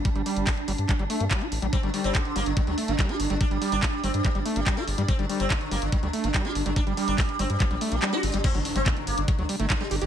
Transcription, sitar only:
X:1
M:4/4
L:1/16
Q:1/4=143
K:Gm
V:1 name="Sitar" clef=bass
z16 | C D, D, C D, D, B, D, D, D, z D, D, G, D, D, | D G, G, D G, G, C G, G, G, z G, z A, G, G, | C D, D, C D, D, B, D, D, D, z D, D, G, D, D, |
D G, G, D G, G, C G, G, G, z G, G, ^F G, G, | C D, D, C D, D, B, D, D, D, z D, D, G, D, D, |]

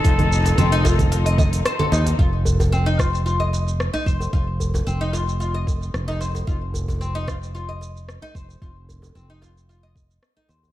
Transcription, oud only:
X:1
M:4/4
L:1/16
Q:1/4=112
K:Fmix
V:1 name="Oud"
F z3 C E F z F e e z c A E z | F z3 C E F z F e4 E c z | F z3 C E F z F e4 E c z | F z3 C E F z F e4 E c z |
F z3 C E F z F e4 E c z |]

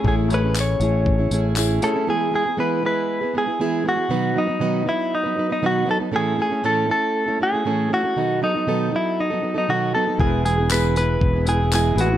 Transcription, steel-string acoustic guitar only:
X:1
M:4/4
L:1/16
Q:1/4=118
K:E
V:1 name="Steel-string acoustic guitar"
[A,CEG]2 [A,CEG] [CEG]3 [A,CEG]3 [CEG] [A,CEG]2 [A,CEG]2 [A,CEG] [CEG] | [E,G,B,EG]2 [G,B,EG] [B,EG] [E,G,B,EG]2 [G,B,EG]3 [B,EG] [G,B,EG] [B,EG] [E,G,B,EG]2 [G,B,EG] [B,EG] | [B,,D,F,B,DB]2 [F,B,DB] [F,B,DB] [B,,D,F,B,DB]2 [F,B,DB]3 [F,B,DB] [F,B,DB] [F,B,DB] [B,,D,F,B,DB]2 [F,B,DB] [F,B,DB] | [A,,E,A,CEA]2 [A,CEA] [A,CEA] [A,,E,A,CEA]2 [A,CEA]3 [A,CEA] [A,CEA] [A,CEA] [A,,E,A,CEA]2 [A,CEA] [A,CEA] |
[B,,D,F,B,DA]2 [F,B,DA] [F,B,DA] [B,,D,F,B,DA]2 [F,B,DA]3 [F,B,DA] [F,B,DA] [F,B,DA] [B,,D,F,B,DA]2 [F,B,DA] [F,B,DA] | [E,G,B,EG]2 [G,B,EG] [B,EG] [E,G,B,EG]2 [G,B,EG]3 [B,EG] [G,B,EG] [B,EG] [E,G,B,EG]2 [G,B,EG] [B,EG] |]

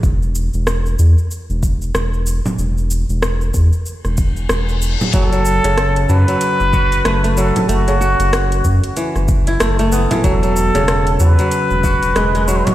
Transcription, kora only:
X:1
M:4/4
L:1/16
Q:"Swing 16ths" 1/4=94
K:F#m
V:1 name="Kora" clef=bass
z16 | z16 | F, F,2 C,3 F, F, z2 F z A, A, F, z | A, C, F z4 z E, z2 E A, A, B, E, |
F, F,2 C,3 F, F, z2 F z G, G, F, z |]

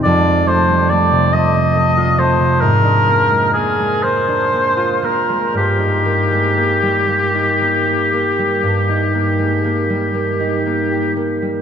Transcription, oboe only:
X:1
M:12/8
L:1/8
Q:3/8=40
K:Eb
V:1 name="Oboe"
d c d e2 c B2 A c2 B | G8- G3 z |]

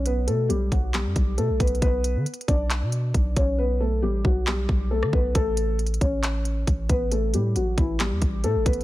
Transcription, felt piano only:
X:1
M:4/4
L:1/8
Q:1/4=136
K:Bm
V:1 name="Felt piano"
[B,B] [A,A] [G,G] [F,F] [G,G]2 [A,A] [B,B] | [B,B]2 z [Dd]4 [Cc] | [B,B] [A,A] [G,G] [F,F] [G,G]2 [A,A] [B,B] | [A,A]2 z [Cc]4 [B,B] |
[A,A] [G,G] [F,F] [E,E] [G,G]2 [A,A] [B,B] |]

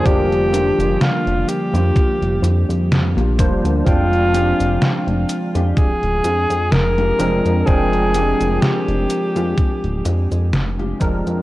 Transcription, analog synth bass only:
X:1
M:4/4
L:1/16
Q:"Swing 16ths" 1/4=63
K:Fdor
V:1 name="Analog synth bass" clef=bass
F,,,3 F,,, z F,,, z F,, z F,,, F,, F,,2 B,,, F,,, D,, | F,,,3 F,,, z F,,, z F,, D,,, D,,, F,, F,, F,,,2 F,,, F,, | F,,,3 F,,, z F,,, z F,, z D,,, F,, F,, F,,,2 F,,, F,, |]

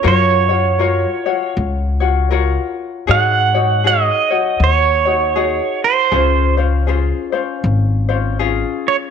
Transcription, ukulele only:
X:1
M:4/4
L:1/8
Q:"Swing" 1/4=79
K:Db
V:1 name="Ukulele"
[FGBd] [FGd] [FGBd] [FGd]2 [FGd] [FGBd]2 | [EGAd] [EGd] [EGAd] [EGd]2 [EGd] [EGA]2 | [DFAc] [DFc] [DFAc] [DFc]2 [DFc] [DFA]2 |]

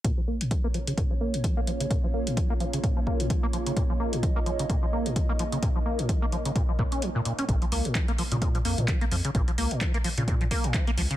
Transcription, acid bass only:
X:1
M:4/4
L:1/16
Q:"Swing 16ths" 1/4=129
K:Bbm
V:1 name="Acid bass" clef=bass
B,, F, B, B,, F, B, F, D, B,, F, B, B,, F, B, F, D, | B,, F, B, B,, F, B, F, D, B,, F, B, B,, F, B, F, D, | B,, F, B, B,, F, B, F, D, B,, F, B, B,, F, B, F, D, | B,, F, B, B,, F, B, F, D, B,, F, B,, D F, B,, B,, D |
B,, F, B, B,, F, B, F, D, B,, F, B, B,, F, B, F, D, | B,, F, B, B,, F, B, F, D, B,, F, B, B,, F, B, F, D, |]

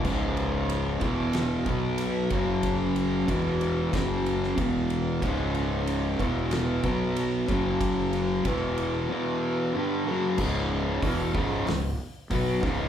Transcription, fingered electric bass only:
X:1
M:4/4
L:1/8
Q:1/4=93
K:E
V:1 name="Fingered electric bass" clef=bass
C,,,3 E,,,2 B,,,2 F,,,- | F,,,2 E,,,2 F,,,2 E,,,2 | C,,,3 E,,,2 B,,,2 F,,,- | F,,,2 E,,,2 z4 |
[K:C#m] C,,,2 E,,, C,,, C,,, z B,,, C,,, |]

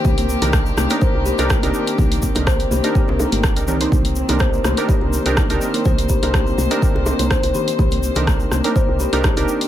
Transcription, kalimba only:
X:1
M:4/4
L:1/16
Q:"Swing 16ths" 1/4=124
K:Cm
V:1 name="Kalimba"
G C z4 C B, c z G z G C z2 | z2 C B, c z G z G C E z3 C E | z2 C B, c z G z G C z4 C B, | c z G z G C z4 C B, c z G z |
G C z4 C B, c z G z G C z2 |]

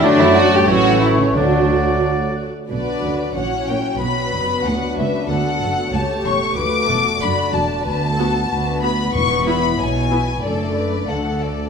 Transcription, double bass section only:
X:1
M:2/4
L:1/8
Q:1/4=92
K:D
V:1 name="Double bass section" clef=bass
F,,2 A,,,2 | D,,3 z | [K:Bm] B,,, D,, ^A,,, ^A,, | B,,, F,,, D,, C,, |
D,, F,,, C,, E,,, | D,, E,,, F,,, E,,, | [K:Bdor] D,,2 D,,2 | E,,,2 B,,,2 |
F,,,2 D,,2 |]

